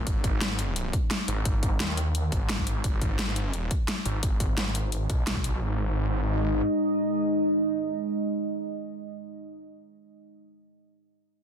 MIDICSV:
0, 0, Header, 1, 4, 480
1, 0, Start_track
1, 0, Tempo, 346821
1, 93, Time_signature, 4, 2, 24, 8
1, 15822, End_track
2, 0, Start_track
2, 0, Title_t, "Ambient pad"
2, 0, Program_c, 0, 92
2, 0, Note_on_c, 0, 56, 83
2, 0, Note_on_c, 0, 63, 77
2, 92, Note_on_c, 0, 75, 91
2, 3917, Note_off_c, 0, 75, 0
2, 3933, Note_on_c, 0, 73, 92
2, 7717, Note_off_c, 0, 56, 0
2, 7717, Note_off_c, 0, 63, 0
2, 7758, Note_off_c, 0, 73, 0
2, 7773, Note_on_c, 0, 56, 79
2, 7773, Note_on_c, 0, 63, 75
2, 7773, Note_on_c, 0, 75, 92
2, 12664, Note_off_c, 0, 56, 0
2, 12664, Note_off_c, 0, 63, 0
2, 12664, Note_off_c, 0, 75, 0
2, 15822, End_track
3, 0, Start_track
3, 0, Title_t, "Detuned saw bass"
3, 0, Program_c, 1, 39
3, 92, Note_on_c, 1, 32, 93
3, 1273, Note_off_c, 1, 32, 0
3, 1772, Note_on_c, 1, 32, 98
3, 2473, Note_off_c, 1, 32, 0
3, 2493, Note_on_c, 1, 39, 99
3, 3193, Note_off_c, 1, 39, 0
3, 3212, Note_on_c, 1, 32, 93
3, 3913, Note_off_c, 1, 32, 0
3, 3932, Note_on_c, 1, 32, 95
3, 5113, Note_off_c, 1, 32, 0
3, 5613, Note_on_c, 1, 32, 99
3, 6313, Note_off_c, 1, 32, 0
3, 6332, Note_on_c, 1, 32, 100
3, 7033, Note_off_c, 1, 32, 0
3, 7052, Note_on_c, 1, 35, 93
3, 7753, Note_off_c, 1, 35, 0
3, 7773, Note_on_c, 1, 32, 93
3, 9157, Note_off_c, 1, 32, 0
3, 15822, End_track
4, 0, Start_track
4, 0, Title_t, "Drums"
4, 92, Note_on_c, 9, 36, 115
4, 93, Note_on_c, 9, 42, 85
4, 231, Note_off_c, 9, 36, 0
4, 231, Note_off_c, 9, 42, 0
4, 332, Note_on_c, 9, 36, 102
4, 333, Note_on_c, 9, 42, 62
4, 471, Note_off_c, 9, 36, 0
4, 471, Note_off_c, 9, 42, 0
4, 573, Note_on_c, 9, 38, 121
4, 573, Note_on_c, 9, 42, 88
4, 711, Note_off_c, 9, 38, 0
4, 711, Note_off_c, 9, 42, 0
4, 813, Note_on_c, 9, 42, 58
4, 951, Note_off_c, 9, 42, 0
4, 1053, Note_on_c, 9, 42, 87
4, 1191, Note_off_c, 9, 42, 0
4, 1292, Note_on_c, 9, 36, 106
4, 1293, Note_on_c, 9, 42, 62
4, 1431, Note_off_c, 9, 36, 0
4, 1431, Note_off_c, 9, 42, 0
4, 1533, Note_on_c, 9, 38, 119
4, 1533, Note_on_c, 9, 42, 87
4, 1671, Note_off_c, 9, 38, 0
4, 1671, Note_off_c, 9, 42, 0
4, 1773, Note_on_c, 9, 42, 63
4, 1911, Note_off_c, 9, 42, 0
4, 2012, Note_on_c, 9, 36, 113
4, 2013, Note_on_c, 9, 42, 87
4, 2151, Note_off_c, 9, 36, 0
4, 2151, Note_off_c, 9, 42, 0
4, 2252, Note_on_c, 9, 36, 99
4, 2253, Note_on_c, 9, 42, 64
4, 2391, Note_off_c, 9, 36, 0
4, 2391, Note_off_c, 9, 42, 0
4, 2493, Note_on_c, 9, 38, 116
4, 2493, Note_on_c, 9, 42, 90
4, 2631, Note_off_c, 9, 38, 0
4, 2631, Note_off_c, 9, 42, 0
4, 2733, Note_on_c, 9, 42, 62
4, 2871, Note_off_c, 9, 42, 0
4, 2973, Note_on_c, 9, 42, 90
4, 3111, Note_off_c, 9, 42, 0
4, 3212, Note_on_c, 9, 36, 101
4, 3213, Note_on_c, 9, 42, 60
4, 3351, Note_off_c, 9, 36, 0
4, 3351, Note_off_c, 9, 42, 0
4, 3452, Note_on_c, 9, 38, 113
4, 3452, Note_on_c, 9, 42, 90
4, 3572, Note_on_c, 9, 36, 59
4, 3591, Note_off_c, 9, 38, 0
4, 3591, Note_off_c, 9, 42, 0
4, 3693, Note_on_c, 9, 42, 64
4, 3711, Note_off_c, 9, 36, 0
4, 3831, Note_off_c, 9, 42, 0
4, 3932, Note_on_c, 9, 36, 108
4, 3932, Note_on_c, 9, 42, 93
4, 4071, Note_off_c, 9, 36, 0
4, 4071, Note_off_c, 9, 42, 0
4, 4172, Note_on_c, 9, 36, 95
4, 4173, Note_on_c, 9, 42, 67
4, 4311, Note_off_c, 9, 36, 0
4, 4311, Note_off_c, 9, 42, 0
4, 4412, Note_on_c, 9, 38, 111
4, 4412, Note_on_c, 9, 42, 96
4, 4551, Note_off_c, 9, 38, 0
4, 4551, Note_off_c, 9, 42, 0
4, 4653, Note_on_c, 9, 42, 65
4, 4791, Note_off_c, 9, 42, 0
4, 4892, Note_on_c, 9, 42, 92
4, 5031, Note_off_c, 9, 42, 0
4, 5132, Note_on_c, 9, 42, 65
4, 5133, Note_on_c, 9, 36, 99
4, 5271, Note_off_c, 9, 36, 0
4, 5271, Note_off_c, 9, 42, 0
4, 5372, Note_on_c, 9, 38, 112
4, 5372, Note_on_c, 9, 42, 94
4, 5511, Note_off_c, 9, 38, 0
4, 5511, Note_off_c, 9, 42, 0
4, 5612, Note_on_c, 9, 42, 66
4, 5751, Note_off_c, 9, 42, 0
4, 5852, Note_on_c, 9, 42, 90
4, 5853, Note_on_c, 9, 36, 113
4, 5991, Note_off_c, 9, 36, 0
4, 5991, Note_off_c, 9, 42, 0
4, 6092, Note_on_c, 9, 42, 70
4, 6093, Note_on_c, 9, 36, 98
4, 6231, Note_off_c, 9, 36, 0
4, 6231, Note_off_c, 9, 42, 0
4, 6332, Note_on_c, 9, 38, 109
4, 6332, Note_on_c, 9, 42, 97
4, 6471, Note_off_c, 9, 38, 0
4, 6471, Note_off_c, 9, 42, 0
4, 6572, Note_on_c, 9, 42, 65
4, 6711, Note_off_c, 9, 42, 0
4, 6813, Note_on_c, 9, 42, 93
4, 6951, Note_off_c, 9, 42, 0
4, 7052, Note_on_c, 9, 36, 100
4, 7053, Note_on_c, 9, 42, 66
4, 7191, Note_off_c, 9, 36, 0
4, 7191, Note_off_c, 9, 42, 0
4, 7293, Note_on_c, 9, 38, 111
4, 7293, Note_on_c, 9, 42, 94
4, 7412, Note_on_c, 9, 36, 58
4, 7431, Note_off_c, 9, 38, 0
4, 7431, Note_off_c, 9, 42, 0
4, 7533, Note_on_c, 9, 42, 66
4, 7551, Note_off_c, 9, 36, 0
4, 7671, Note_off_c, 9, 42, 0
4, 15822, End_track
0, 0, End_of_file